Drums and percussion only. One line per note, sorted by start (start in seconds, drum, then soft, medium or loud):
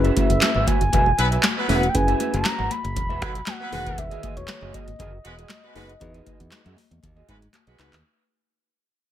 0.05 closed hi-hat soft
0.05 muted conga soft
0.17 kick loud
0.17 closed hi-hat medium
0.17 high conga medium
0.30 closed hi-hat medium
0.41 snare loud
0.41 clap medium
0.41 closed hi-hat medium
0.41 muted conga soft
0.41 high conga medium
0.55 muted conga soft
0.55 low conga medium
0.67 kick loud
0.67 closed hi-hat medium
0.67 high conga medium
0.81 closed hi-hat soft
0.93 kick loud
0.93 closed hi-hat loud
0.93 muted conga soft
0.93 low conga medium
1.06 muted conga soft
1.19 closed hi-hat medium
1.32 closed hi-hat medium
1.43 snare loud
1.43 clap medium
1.43 closed hi-hat loud
1.43 muted conga soft
1.43 high conga medium
1.69 open hi-hat medium
1.69 high conga medium
1.83 closed hi-hat medium
1.95 kick loud
1.95 closed hi-hat loud
2.08 closed hi-hat soft
2.08 muted conga soft
2.20 closed hi-hat medium
2.20 high conga medium
2.34 closed hi-hat medium
2.45 snare loud
2.45 clap loud
2.45 closed hi-hat medium
2.45 muted conga soft
2.45 high conga medium
2.59 muted conga soft
2.59 low conga medium
2.71 closed hi-hat medium
2.71 high conga medium
2.85 closed hi-hat soft
2.96 kick loud
2.96 closed hi-hat loud
2.96 muted conga soft
2.96 low conga medium
3.10 muted conga soft
3.22 kick loud
3.22 closed hi-hat medium
3.35 closed hi-hat medium
3.46 snare loud
3.46 clap medium
3.46 closed hi-hat loud
3.46 muted conga soft
3.46 high conga medium
3.73 open hi-hat medium
3.73 high conga medium
3.86 kick loud
3.86 closed hi-hat medium
3.98 kick loud
3.98 closed hi-hat loud
3.98 muted conga soft
4.11 closed hi-hat soft
4.11 muted conga soft
4.23 kick loud
4.23 closed hi-hat medium
4.23 high conga medium
4.37 closed hi-hat medium
4.48 snare loud
4.48 clap loud
4.48 closed hi-hat medium
4.48 muted conga soft
4.48 high conga medium
4.61 low conga medium
4.73 kick loud
4.73 closed hi-hat medium
4.73 high conga medium
4.88 closed hi-hat soft
4.99 kick loud
4.99 closed hi-hat loud
4.99 muted conga soft
4.99 low conga medium
5.25 closed hi-hat medium
5.39 closed hi-hat medium
5.49 snare loud
5.49 clap loud
5.49 closed hi-hat loud
5.49 muted conga soft
5.49 high conga medium
5.64 muted conga soft
5.76 open hi-hat medium
5.76 high conga medium
5.89 closed hi-hat medium
6.00 kick loud
6.00 closed hi-hat loud
6.00 muted conga soft
6.14 closed hi-hat soft
6.26 kick loud
6.26 closed hi-hat medium
6.26 high conga medium
6.40 closed hi-hat medium
6.52 snare loud
6.52 clap medium
6.52 closed hi-hat medium
6.52 high conga medium
6.65 closed hi-hat soft
6.65 muted conga soft
6.65 low conga medium
6.77 open hi-hat medium
6.77 high conga medium
6.91 closed hi-hat medium
7.03 kick loud
7.03 closed hi-hat loud
7.03 low conga medium
7.16 muted conga soft
7.29 kick loud
7.29 closed hi-hat medium
7.29 high conga medium
7.42 closed hi-hat medium
7.53 clap medium
7.53 closed hi-hat loud
7.53 muted conga soft
7.53 high conga loud
7.67 closed hi-hat soft
7.67 muted conga soft
7.79 clap loud
7.79 closed hi-hat medium
7.79 high conga medium
7.93 clap loud
7.93 closed hi-hat medium